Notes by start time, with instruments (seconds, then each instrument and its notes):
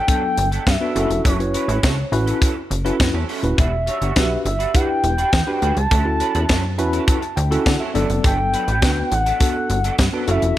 Already playing: soft synth lead G5
0.08 clean electric guitar F#3 B3 D4 A4, tine electric piano F#3 B3 D4 A4, kick, closed hi-hat
0.23 muted clean electric guitar stroke
0.37 analog synth bass G1, muted clean electric guitar stroke, closed hi-hat
0.52 clean electric guitar F#3 B3 D4 A4, closed hi-hat
0.67 analog synth bass G2, soft synth lead E5, kick, snare, closed hi-hat
0.80 clean electric guitar F#3 B3 D4 A4, tine electric piano B3 D4 F#4 B4
0.95 analog synth bass F#1, clean electric guitar F#3 C#4 E4 A4, tine electric piano C#4 E4 F#4 A4, closed hi-hat
1.10 analog synth bass F1, muted clean electric guitar stroke, closed hi-hat
1.24 analog synth bass F#1, clean electric guitar F#3 C#4 E4 A4, soft synth lead C#5, kick, closed hi-hat
1.39 tine electric piano C#4 E4 F#4 B4, muted clean electric guitar stroke, closed hi-hat
1.54 clean electric guitar F#3 C#4 E4 B4, closed hi-hat
1.68 analog synth bass A1, clean electric guitar F#3 C#4 E4 B4, closed hi-hat
1.83 analog synth bass C#2, clean electric guitar F#3 C#4 E4 A4, kick, snare, closed hi-hat
1.97 muted clean electric guitar stroke
2.12 analog synth bass A1, tine electric piano C#4 E4 F#4 B4, muted clean electric guitar stroke, closed hi-hat
2.26 clean electric guitar F#3 C#4 E4 A4, closed hi-hat
2.41 clean electric guitar F#3 C#4 E4 A4, kick, closed hi-hat
2.56 muted clean electric guitar stroke
2.70 analog synth bass F#1, muted clean electric guitar stroke, closed hi-hat
2.85 clean electric guitar F#3 C#4 E4 A4, tine electric piano C#4 E4 F#4 B4, closed hi-hat
3.00 analog synth bass F#2, kick, snare, closed hi-hat
3.14 analog synth bass E2, clean electric guitar F#3 C#4 E4 A4
3.28 clean electric guitar F#3 C#4 E4 A4, open hi-hat
3.43 analog synth bass D#1, tine electric piano C#4 E4 F#4 B4, muted clean electric guitar stroke, closed hi-hat
3.57 analog synth bass E1, clean electric guitar G3 D4 F#4 B4, soft synth lead E5, kick, closed hi-hat
3.72 muted clean electric guitar stroke
3.87 clean electric guitar G3 D4 F#4 C#5, closed hi-hat
4.01 analog synth bass G1, clean electric guitar G3 D4 F#4 C#5, closed hi-hat
4.16 analog synth bass B1, clean electric guitar G3 D4 F#4 B4, tine electric piano D4 F#4 G4 B4, kick, snare, closed hi-hat
4.30 muted clean electric guitar stroke
4.45 analog synth bass G1, soft synth lead E5, muted clean electric guitar stroke, closed hi-hat
4.59 clean electric guitar G3 D4 F#4 B4, closed hi-hat
4.74 clean electric guitar G3 D4 F#4 B4, tine electric piano D4 E4 G4 B4, soft synth lead G5, kick, closed hi-hat
4.89 muted clean electric guitar stroke
5.03 analog synth bass E1, muted clean electric guitar stroke, closed hi-hat
5.18 clean electric guitar G3 D4 F#4 B4, closed hi-hat
5.33 analog synth bass E2, kick, snare, closed hi-hat
5.47 clean electric guitar G3 D4 F#4 B4, tine electric piano D4 F#4 G4 B4
5.62 analog synth bass D2, clean electric guitar G3 D4 F#4 B4, closed hi-hat
5.76 analog synth bass C#2, soft synth lead A5, muted clean electric guitar stroke, closed hi-hat
5.91 analog synth bass D2, clean electric guitar F#3 C#4 E4 A4, kick, closed hi-hat
6.05 tine electric piano C#4 E4 F#4 A4, muted clean electric guitar stroke
6.20 clean electric guitar F#3 C#4 E4 B4, closed hi-hat
6.34 analog synth bass E2, clean electric guitar F#3 C#4 E4 B4, closed hi-hat
6.49 analog synth bass F#2, clean electric guitar F#3 C#4 E4 A4, kick, snare, closed hi-hat
6.64 muted clean electric guitar stroke
6.78 analog synth bass E2, tine electric piano C#4 E4 F#4 B4 B5, muted clean electric guitar stroke, closed hi-hat
6.93 clean electric guitar F#3 C#4 E4 A4, closed hi-hat
7.08 clean electric guitar F#3 C#4 E4 A4, tine electric piano A5, kick, closed hi-hat
7.22 tine electric piano A5, muted clean electric guitar stroke, closed hi-hat
7.36 analog synth bass D2, tine electric piano G5, muted clean electric guitar stroke, closed hi-hat
7.50 clean electric guitar F#3 C#4 E4 A4, tine electric piano C#4 E4 F#4 A4, closed hi-hat
7.66 analog synth bass D3, tine electric piano F#5, kick, snare, closed hi-hat
7.80 clean electric guitar F#3 C#4 E4 A4, tine electric piano E5
7.94 analog synth bass G1, clean electric guitar F#3 B3 D4 A4, tine electric piano F#3 B3 D4 A4 D5, closed hi-hat
8.09 analog synth bass F#1, muted clean electric guitar stroke, closed hi-hat
8.23 analog synth bass G1, clean electric guitar F#3 B3 D4 A4, soft synth lead G5, kick, closed hi-hat
8.38 muted clean electric guitar stroke
8.53 clean electric guitar F#3 B3 D4 B4, closed hi-hat
8.68 analog synth bass A1, clean electric guitar F#3 B3 D4 B4, closed hi-hat
8.82 analog synth bass D2, clean electric guitar F#3 B3 D4 A4, tine electric piano B3 D4 F#4 B4, kick, snare, closed hi-hat
8.97 muted clean electric guitar stroke
9.11 analog synth bass A1, soft synth lead F#5, muted clean electric guitar stroke, closed hi-hat
9.26 clean electric guitar F#3 B3 D4 A4, closed hi-hat
9.40 clean electric guitar F#3 B3 D4 A4, tine electric piano B3 D4 F#4 A4, soft synth lead F#5, kick, closed hi-hat
9.55 muted clean electric guitar stroke
9.70 analog synth bass G1, muted clean electric guitar stroke, closed hi-hat
9.84 clean electric guitar F#3 B3 D4 A4, closed hi-hat
9.98 analog synth bass G2, kick, snare, closed hi-hat
10.13 clean electric guitar F#3 B3 D4 A4, tine electric piano B3 D4 F#4 B4
10.27 analog synth bass F#1, clean electric guitar A3 C#4 E4 A4, tine electric piano C#4 E4 F#4 A4, soft synth lead E5, closed hi-hat
10.42 analog synth bass F1, muted clean electric guitar stroke, closed hi-hat